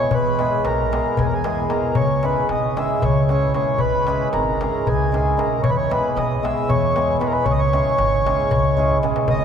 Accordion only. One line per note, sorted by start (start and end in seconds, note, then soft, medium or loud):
0.00 0.14 C#5 loud
0.14 0.68 B4 loud
0.66 1.21 A#4 medium
1.19 1.27 G#4 medium
1.26 1.34 A#4 medium
1.34 1.72 G#4 medium
1.70 1.96 A#4 medium
1.96 2.25 C#5 medium
2.24 2.48 B4 medium
2.51 2.79 D#5 medium
2.78 3.04 E5 medium
3.04 3.29 C#5 medium
3.30 3.53 C#5 medium
3.54 3.80 C#5 medium
3.79 4.29 B4 loud
4.34 4.88 A#4 medium
4.87 5.40 G#4 medium
5.39 5.62 A#4 medium
5.63 5.70 C#5 loud
5.70 5.77 B4 medium
5.77 5.91 C#5 medium
5.92 6.17 B4 medium
6.17 6.45 D#5 medium
6.44 6.70 E5 medium
6.69 7.17 C#5 medium
7.21 7.27 B4 medium
7.26 7.33 A#4 medium
7.32 7.45 B4 medium
7.44 7.52 C#5 loud
7.52 7.60 D#5 medium
7.59 8.98 C#5 loud
9.30 9.45 D#5 loud